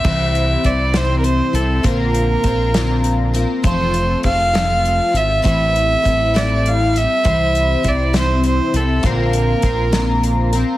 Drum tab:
CC |x-----|------|------|------|
HH |-xxxxx|xxxxxx|xxxxxx|xxxxxx|
SD |---o--|---o--|---o--|---o--|
BD |o-o---|o-o---|o-o---|o-o---|

CC |------|------|
HH |xxxxxx|xxxxxx|
SD |---o--|---o--|
BD |o-o---|o-o---|